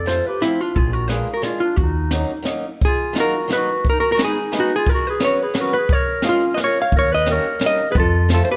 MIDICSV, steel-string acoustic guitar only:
0, 0, Header, 1, 2, 480
1, 0, Start_track
1, 0, Key_signature, -6, "minor"
1, 0, Tempo, 342466
1, 1067, Time_signature, 3, 2, 24, 8
1, 12006, End_track
2, 0, Start_track
2, 0, Title_t, "Steel-string acoustic guitar"
2, 0, Program_c, 0, 25
2, 77, Note_on_c, 0, 53, 60
2, 83, Note_on_c, 0, 57, 57
2, 101, Note_on_c, 0, 60, 54
2, 108, Note_on_c, 0, 65, 61
2, 342, Note_off_c, 0, 53, 0
2, 345, Note_off_c, 0, 57, 0
2, 355, Note_off_c, 0, 60, 0
2, 355, Note_off_c, 0, 65, 0
2, 569, Note_on_c, 0, 53, 54
2, 592, Note_on_c, 0, 57, 52
2, 603, Note_on_c, 0, 60, 43
2, 606, Note_on_c, 0, 65, 58
2, 827, Note_off_c, 0, 53, 0
2, 841, Note_off_c, 0, 57, 0
2, 842, Note_off_c, 0, 60, 0
2, 846, Note_off_c, 0, 65, 0
2, 1518, Note_on_c, 0, 56, 62
2, 1527, Note_on_c, 0, 62, 54
2, 1529, Note_on_c, 0, 58, 56
2, 1551, Note_on_c, 0, 65, 63
2, 1781, Note_off_c, 0, 62, 0
2, 1782, Note_off_c, 0, 56, 0
2, 1785, Note_off_c, 0, 58, 0
2, 1796, Note_off_c, 0, 65, 0
2, 1987, Note_on_c, 0, 56, 64
2, 1997, Note_on_c, 0, 58, 47
2, 1998, Note_on_c, 0, 62, 50
2, 2019, Note_on_c, 0, 65, 69
2, 2256, Note_off_c, 0, 56, 0
2, 2257, Note_off_c, 0, 58, 0
2, 2260, Note_off_c, 0, 62, 0
2, 2270, Note_off_c, 0, 65, 0
2, 2959, Note_on_c, 0, 54, 71
2, 2975, Note_on_c, 0, 58, 58
2, 2984, Note_on_c, 0, 63, 63
2, 2987, Note_on_c, 0, 61, 58
2, 3223, Note_off_c, 0, 54, 0
2, 3231, Note_off_c, 0, 58, 0
2, 3234, Note_off_c, 0, 61, 0
2, 3236, Note_off_c, 0, 63, 0
2, 3399, Note_on_c, 0, 54, 63
2, 3414, Note_on_c, 0, 58, 58
2, 3427, Note_on_c, 0, 61, 51
2, 3436, Note_on_c, 0, 63, 78
2, 3687, Note_off_c, 0, 54, 0
2, 3696, Note_off_c, 0, 58, 0
2, 3697, Note_off_c, 0, 61, 0
2, 3706, Note_off_c, 0, 63, 0
2, 4387, Note_on_c, 0, 54, 62
2, 4393, Note_on_c, 0, 58, 64
2, 4415, Note_on_c, 0, 65, 64
2, 4416, Note_on_c, 0, 63, 67
2, 4419, Note_on_c, 0, 66, 77
2, 4659, Note_off_c, 0, 54, 0
2, 4662, Note_off_c, 0, 58, 0
2, 4672, Note_off_c, 0, 63, 0
2, 4674, Note_off_c, 0, 65, 0
2, 4675, Note_off_c, 0, 66, 0
2, 4874, Note_on_c, 0, 54, 67
2, 4888, Note_on_c, 0, 58, 57
2, 4895, Note_on_c, 0, 65, 66
2, 4904, Note_on_c, 0, 63, 66
2, 4915, Note_off_c, 0, 65, 0
2, 4920, Note_on_c, 0, 66, 68
2, 5143, Note_off_c, 0, 54, 0
2, 5150, Note_off_c, 0, 58, 0
2, 5158, Note_off_c, 0, 63, 0
2, 5166, Note_off_c, 0, 66, 0
2, 5849, Note_on_c, 0, 56, 66
2, 5866, Note_on_c, 0, 59, 60
2, 5873, Note_on_c, 0, 63, 62
2, 5876, Note_on_c, 0, 68, 72
2, 5882, Note_on_c, 0, 71, 77
2, 6107, Note_off_c, 0, 56, 0
2, 6117, Note_off_c, 0, 63, 0
2, 6118, Note_off_c, 0, 59, 0
2, 6121, Note_off_c, 0, 71, 0
2, 6122, Note_off_c, 0, 68, 0
2, 6334, Note_on_c, 0, 56, 71
2, 6340, Note_on_c, 0, 59, 65
2, 6357, Note_on_c, 0, 63, 65
2, 6363, Note_on_c, 0, 68, 68
2, 6377, Note_on_c, 0, 71, 57
2, 6588, Note_off_c, 0, 56, 0
2, 6591, Note_off_c, 0, 59, 0
2, 6599, Note_off_c, 0, 63, 0
2, 6603, Note_off_c, 0, 68, 0
2, 6606, Note_off_c, 0, 71, 0
2, 7285, Note_on_c, 0, 54, 68
2, 7294, Note_on_c, 0, 66, 71
2, 7297, Note_on_c, 0, 61, 68
2, 7299, Note_on_c, 0, 59, 65
2, 7305, Note_on_c, 0, 71, 70
2, 7541, Note_off_c, 0, 59, 0
2, 7542, Note_off_c, 0, 54, 0
2, 7544, Note_off_c, 0, 61, 0
2, 7546, Note_off_c, 0, 66, 0
2, 7547, Note_off_c, 0, 71, 0
2, 7762, Note_on_c, 0, 54, 67
2, 7769, Note_on_c, 0, 61, 71
2, 7780, Note_on_c, 0, 59, 59
2, 7787, Note_on_c, 0, 66, 73
2, 7796, Note_on_c, 0, 71, 73
2, 8016, Note_off_c, 0, 54, 0
2, 8021, Note_off_c, 0, 61, 0
2, 8022, Note_off_c, 0, 59, 0
2, 8028, Note_off_c, 0, 66, 0
2, 8033, Note_off_c, 0, 71, 0
2, 8732, Note_on_c, 0, 56, 83
2, 8735, Note_on_c, 0, 58, 60
2, 8743, Note_on_c, 0, 61, 66
2, 8748, Note_on_c, 0, 65, 73
2, 8756, Note_on_c, 0, 68, 63
2, 8984, Note_off_c, 0, 58, 0
2, 8986, Note_off_c, 0, 56, 0
2, 8991, Note_off_c, 0, 61, 0
2, 8994, Note_off_c, 0, 65, 0
2, 8995, Note_off_c, 0, 68, 0
2, 9216, Note_on_c, 0, 56, 66
2, 9226, Note_on_c, 0, 58, 43
2, 9231, Note_on_c, 0, 65, 64
2, 9239, Note_on_c, 0, 61, 51
2, 9246, Note_on_c, 0, 68, 71
2, 9472, Note_off_c, 0, 56, 0
2, 9474, Note_off_c, 0, 58, 0
2, 9480, Note_off_c, 0, 65, 0
2, 9481, Note_off_c, 0, 61, 0
2, 9486, Note_off_c, 0, 68, 0
2, 10176, Note_on_c, 0, 55, 68
2, 10183, Note_on_c, 0, 58, 50
2, 10183, Note_on_c, 0, 61, 62
2, 10194, Note_on_c, 0, 63, 57
2, 10201, Note_on_c, 0, 67, 87
2, 10436, Note_off_c, 0, 55, 0
2, 10438, Note_off_c, 0, 58, 0
2, 10440, Note_off_c, 0, 61, 0
2, 10445, Note_off_c, 0, 63, 0
2, 10448, Note_off_c, 0, 67, 0
2, 10645, Note_on_c, 0, 55, 65
2, 10664, Note_on_c, 0, 58, 56
2, 10670, Note_on_c, 0, 61, 62
2, 10681, Note_on_c, 0, 67, 59
2, 10682, Note_on_c, 0, 63, 53
2, 10911, Note_off_c, 0, 55, 0
2, 10920, Note_off_c, 0, 58, 0
2, 10924, Note_off_c, 0, 61, 0
2, 10927, Note_off_c, 0, 63, 0
2, 10929, Note_off_c, 0, 67, 0
2, 11616, Note_on_c, 0, 53, 70
2, 11623, Note_on_c, 0, 57, 75
2, 11631, Note_on_c, 0, 60, 68
2, 11635, Note_on_c, 0, 65, 67
2, 11643, Note_on_c, 0, 69, 72
2, 11874, Note_off_c, 0, 53, 0
2, 11878, Note_off_c, 0, 57, 0
2, 11882, Note_off_c, 0, 60, 0
2, 11885, Note_off_c, 0, 65, 0
2, 11885, Note_off_c, 0, 69, 0
2, 12006, End_track
0, 0, End_of_file